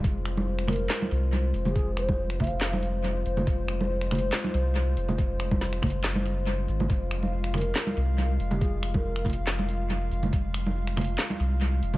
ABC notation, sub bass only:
X:1
M:4/4
L:1/8
Q:"Swing 16ths" 1/4=140
K:Fphr
V:1 name="Sub bass" clef=bass
F,,,4 z C,,2 F,,,- | F,,,3 F,,,4 F,,, | F,,,4 z C,,2 F,,,- | F,,,3 G,,,4 A,,, |
F,,,4 z C,,2 F,,,- | F,,,3 F,,,4 F,,, | F,,,4 z C,,2 F,,, |]